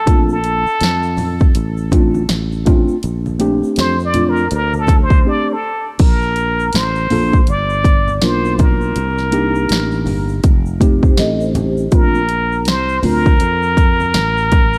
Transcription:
Already playing: A4
0.06 A#1 A3 C4 D4 F4, kick, closed hi-hat, shaker
0.29 A4, shaker
0.44 closed hi-hat, shaker
0.66 muted fretless electric bass stroke, shaker
0.81 F2, snare, closed hi-hat, shaker
1.03 shaker
1.17 open hi-hat, low conga, shaker
1.39 kick, shaker
1.55 A1, closed hi-hat, shaker
1.77 shaker
1.92 A3 C4 D4 F4, kick, closed hi-hat, low conga, shaker
2.14 high conga, shaker
2.29 A1, snare, closed hi-hat, shaker
2.52 shaker
2.66 A3 C4 D4 F4, kick, closed hi-hat, low conga, shaker
2.88 muted fretless electric bass stroke, shaker
3.03 A#1, closed hi-hat, shaker
3.26 high conga, shaker
3.39 A3 C4 D4 G4, closed hi-hat, shaker
3.63 muted fretless electric bass stroke, shaker
3.76 F2 C5, snare, closed hi-hat, shaker
4.00 shaker
4.05 D5
4.14 A3 C4 D4 F4, closed hi-hat, low conga, shaker
4.29 A#4
4.36 shaker
4.51 D2 A#4, closed hi-hat, shaker
4.74 high conga, shaker
4.79 A4
4.87 kick, closed hi-hat, low conga, shaker
5.02 C5
5.10 kick, high conga, shaker
5.25 A3 C4 D4 G4 D5
5.53 A4
5.99 A#1 A#4, kick, closed hi-hat, crash, shaker
6.22 shaker
6.36 closed hi-hat, shaker
6.60 shaker
6.73 A1 C5, snare, closed hi-hat, shaker
6.95 shaker
7.10 A#1 A#3 D4 F4 A4, open hi-hat, low conga, shaker
7.33 kick, shaker
7.47 G1 D5, closed hi-hat, high conga, shaker
7.70 shaker
7.84 kick, closed hi-hat, shaker
8.08 high conga, shaker
8.21 B1 A#3 D4 F4 A#4 C5, snare, closed hi-hat, shaker
8.45 shaker
8.59 A#4, kick, closed hi-hat, high conga, low conga, shaker
8.81 shaker
8.95 C2, closed hi-hat, shaker
9.18 snare, shaker
9.31 A#3 D4 D#4 G4, closed hi-hat, shaker
9.55 shaker
9.69 A1, snare, closed hi-hat, shaker
9.91 shaker
10.06 G1, open hi-hat, low conga, shaker
10.28 shaker
10.43 F1, kick, closed hi-hat, high conga, shaker
10.66 shaker
10.80 A3 C4 D#4 G4, kick, closed hi-hat, shaker
11.03 G4 C5, kick, high conga, shaker
11.17 A1 A4 D#5, snare, closed hi-hat, shaker
11.41 G4 C5, shaker
11.55 closed hi-hat, high conga, low conga, shaker
11.77 shaker
11.91 A#1 A3 C4 D4 F4 A#4, kick, closed hi-hat, shaker
12.15 shaker
12.29 closed hi-hat, shaker
12.52 shaker
12.65 C2 C5, snare, closed hi-hat, shaker
12.89 shaker
13.02 D2 A3 C4 D4 F4 A#4, open hi-hat, low conga, shaker
13.25 kick, shaker
13.40 F2, closed hi-hat, high conga, shaker
13.62 shaker
13.77 kick, closed hi-hat, shaker
14.00 high conga, shaker
14.14 A1, snare, closed hi-hat, shaker
14.37 shaker
14.52 kick, closed hi-hat, high conga, low conga, shaker
14.73 shaker

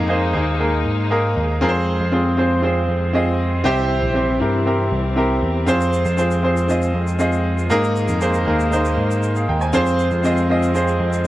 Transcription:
Already playing: F2 G#2 G#3 A#3 D#4 G#4 A#4
0.08 A#3 D#4 G#4 C5
0.33 D#2 A#3 D#4 G#4 A#4
0.59 A#3 D#4 G#4 A#4
0.86 G#2
1.10 A#3 D#4 G#4 A#4
1.37 D#2
1.61 F2 F3 C4 F4 G#4 A#4
1.69 C5
2.00 F2
2.12 C4 F4 G#4 C5
2.37 C4 F4 G#4 C5
2.63 C4 F4 G#4 C5
2.89 F2
3.13 C4 F4 G#4 D#5
3.64 C2 C3 E3 G3 C4 E4 G4 C5
4.02 A#1
4.14 C4 E4 G4 C5
4.40 G2 C4 E4 G4 A#4
4.66 C4 E4 G4 A#4
4.91 C2
5.16 C4 E4 G4 A#4
5.42 E2
5.66 F2 F3 G#3 C4 F4 G#4 C5, shaker
5.81 shaker
5.93 shaker
6.06 F2, shaker
6.17 C4 F4 G#4 C5, shaker
6.31 shaker
6.43 C4 F4 G#4 C5
6.57 shaker
6.68 C4 F4 G#4 D#5, shaker
6.82 shaker
6.94 F2
7.07 shaker
7.19 C4 F4 G#4 D#5, shaker
7.32 shaker
7.58 shaker
7.70 G#2 D#3 A#3 D#4 G#4 A#4, shaker
7.84 shaker
7.96 shaker
8.08 F2, shaker
8.20 A#3 D#4 G#4 C5, shaker
8.34 shaker
8.46 D#2 A#3 D#4 G#4 A#4
8.60 shaker
8.71 A#3 D#4 G#4 C5, shaker
8.85 shaker
8.98 G#2
9.11 shaker
9.23 shaker
9.35 G#4 F5, shaker
9.48 D#2 A#4 G5
9.61 C5 G#5, shaker
9.73 F2 F3 G#3 C4 F4 G#4 C5, shaker
9.86 shaker
9.99 shaker
10.11 F2, shaker
10.24 C4 F4 G#4 D#5, shaker
10.37 shaker
10.49 C4 F4 G#4 D#5
10.63 shaker
10.74 C4 F4 G#4 C5, shaker
10.88 shaker
11.00 F2
11.13 shaker

